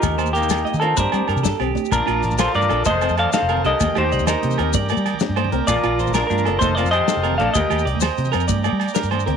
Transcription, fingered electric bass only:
\new Staff \with { instrumentName = "Fingered electric bass" } { \clef bass \time 12/8 \key bes \major \tempo 4. = 128 ees,2 r16 ees8. g,16 r16 g16 r16 g,16 c16 g,16 r16 ces,8 r8 | bes,,16 r16 bes,,8 a,,16 bes,,8 r16 g,8 bes,,8 f,,8. f,8 r8 f,,8. c,16 r16 | ees,16 r16 ees,8 c,16 ees,8 r16 c8 ees,8 g,8. g8 r8 g,8. c,16 r16 | bes,,16 r16 bes,,8 a,,16 bes,,8 r16 g,8 ges,,8 f,,8. f,8 r8 f,,8. bes,,16 r16 |
ees,16 r16 ees,8 c,16 ees,8 r16 c8 f,8 g,8. g8 r8 g,8. d,16 r16 | }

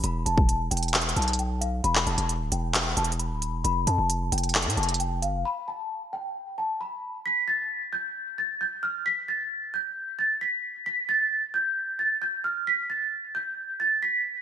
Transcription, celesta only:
\new Staff \with { instrumentName = "Celesta" } { \time 4/4 \key e \phrygian \tempo 4 = 133 b''8 a''4 g''4 a''8 g''8 f''8 | b''8 a''4 g''4 a''8 b''4 | b''8 a''4 g''4 a''8 g''8 f''8 | b''8 a''4 g''4 a''8 b''4 |
b'''8 a'''4 g'''4 a'''8 g'''8 f'''8 | b'''8 a'''4 g'''4 a'''8 b'''4 | b'''8 a'''4 g'''4 a'''8 g'''8 f'''8 | b'''8 a'''4 g'''4 a'''8 b'''4 | }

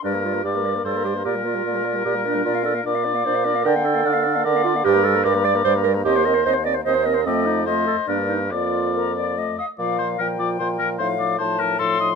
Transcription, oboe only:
\new Staff \with { instrumentName = "Oboe" } { \time 3/4 \key g \minor \tempo 4 = 150 bes'4 d''4 c''4 | bes'2.~ | bes'4 d''2 | g''4 f''4 d''4 |
\key bes \major bes'4 d''2 | c''4. r8 ees''4 | d''4 c''4 bes'4 | d''2~ d''8 ees''8 |
d''8 c''8 bes'8 d''8 c''8 bes'8 | c''8 d''8 c''8 bes'8 a'8 ees''8 | }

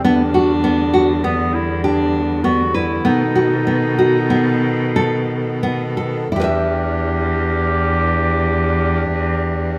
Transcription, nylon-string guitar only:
\new Staff \with { instrumentName = "Nylon-string guitar" } { \time 5/4 \key e \minor \tempo 4 = 92 b8 fis'8 b8 fis'8 b4 g'4 b8 b'8 | b8 fis'8 b8 fis'8 b4 a'4 b8 a'8 | <e' g' b' e''>1~ <e' g' b' e''>4 | }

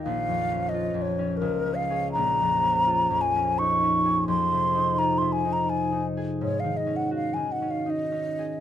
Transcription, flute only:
\new Staff \with { instrumentName = "Flute" } { \time 3/4 \key bes \minor \tempo 4 = 84 f''4 ees''8 des''8 bes'8 f''8 | bes''4. aes''8 des'''4 | c'''4 bes''16 c'''16 aes''16 bes''16 aes''8 r8 | des''16 f''16 ees''16 ges''16 f''16 aes''16 ges''16 f''16 ees''4 | }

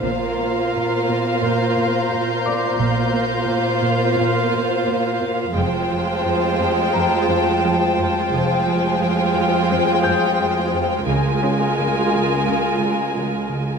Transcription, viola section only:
\new Staff \with { instrumentName = "Viola section" } { \time 4/4 \key f \mixolydian \tempo 4 = 87 <bes f'>1 | <bes f'>1 | <aes f'>1 | <aes f'>1 |
<gis eis'>1 | }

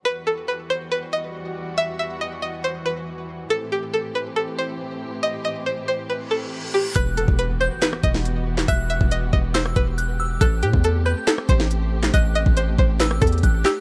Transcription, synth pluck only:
\new Staff \with { instrumentName = "Synth pluck" } { \time 4/4 \key e \minor \tempo 4 = 139 b'8 a'8 b'8 c''8 b'8 dis''4. | e''8 e''8 dis''8 dis''8 c''8 b'4. | a'8 g'8 a'8 b'8 a'8 c''4. | dis''8 dis''8 c''8 c''8 b'8 a'4 g'8 |
b'8 a'8 b'8 c''8 b'8 dis''4. | e''8 e''8 dis''8 dis''8 c''8 b'4. | a'8 g'8 a'8 b'8 a'8 c''4. | dis''8 dis''8 c''8 c''8 b'8 a'4 g'8 | }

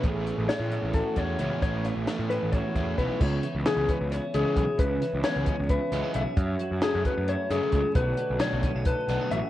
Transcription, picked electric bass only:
\new Staff \with { instrumentName = "Picked electric bass" } { \clef bass \time 7/8 \key cis \phrygian \tempo 4 = 133 a,,8. a,,16 r16 a,8 a,,8 r16 e,8 cis,16 r16 | a,,8. a,,16 r16 a,8 a,,8 r16 e,8 b,,16 r16 | cis,8 r16 cis,16 r16 cis,16 r16 cis,8 r16 cis,16 r16 b,,16 r16 | cis,8 r16 cis,16 r16 cis,16 r16 cis,8 r16 cis,16 r16 b,,16 r16 |
fis,8 r16 fis,16 r16 fis,16 r16 fis,8 r16 fis,16 r16 cis,16 r16 | b,,8 r16 b,,16 r16 b,,16 r16 b,,8 r16 b,,16 r16 a,,16 r16 | }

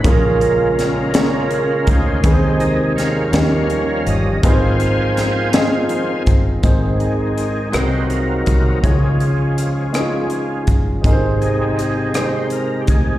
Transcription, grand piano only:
<<
  \new Staff \with { instrumentName = "Grand piano" } { \time 6/8 \key aes \major \tempo 4. = 55 <bes des' f' aes' bes'>4 r8 <bes des' f' aes' des''>4 r8 | <aes c' ees' aes' ces'' c''>4 r8 <bes des' ees' g' bes'>4 r8 | <c' ees' f' aes' ces'' c''>4 r8 <c' ees' f' aes' ees''>4 r8 | <aes c' ees' aes' c''>4 r8 <c' ees' ges' aes' ces'' c''>4 r8 |
<aes des' ees' f' aes' des''>4 r8 <aes des' ees' f' aes' ees''>4 r8 | <aes c' ees' aes' bes' c''>4 r8 <aes c' ees' aes' c''>4 r8 | }
  \new Staff \with { instrumentName = "Grand piano" } { \clef bass \time 6/8 \key aes \major bes,4. r4. | ees4. ees4. | aes,4. r4. | aes,4. c4. |
des4. r4. | aes,4. r4. | }
>>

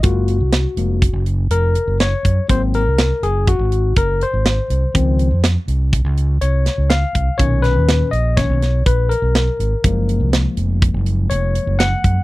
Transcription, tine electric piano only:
<<
  \new Staff \with { instrumentName = "Tine electric piano" } { \time 5/4 \key ges \lydian \tempo 4 = 122 ges'2~ ges'8 r8 bes'4 des''4 | c''8 bes'4 aes'8 ges'4 bes'8 c''4.~ | c''4 r2 des''4 f''4 | des''8 ces''4 ees''8 des''4 ces''8 bes'4.~ |
bes'4 r2 des''4 ges''4 | }
  \new Staff \with { instrumentName = "Tine electric piano" } { \clef bass \time 5/4 \key ges \lydian <aes bes f'>8 r4 <f aes bes>8 r2. | <ges bes c'>8 r1 r8 | <ees f c'>8 r1 r8 | <bes, ees des'>4. r8 <ees bes des'>8 r2 r8 |
<f aes bes>1~ <f aes bes>4 | }
>>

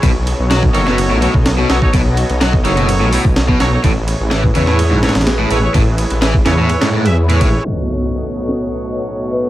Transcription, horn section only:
\new Staff \with { instrumentName = "Horn section" } { \time 4/4 \key b \mixolydian \tempo 4 = 126 r4. <dis' fis' a' cis''>4 <dis' fis' a' cis''>16 r8. <dis' fis' a' cis''>16 <dis' fis' a' cis''>16 | r4. <dis' fis' a' cis''>4 <dis' fis' a' cis''>16 r8. <dis' fis' a' cis''>16 <dis' fis' a' cis''>16 | r4. <e' gis' b' cis''>4 <e' gis' b' cis''>16 r8. <e' gis' b' cis''>16 <e' gis' b' cis''>16 | r4. <e' gis' b' cis''>4 r16 <e' gis' b' e''>16 r16 <e' gis' b' cis''>8. |
<b, a dis' fis' cis''>1 | }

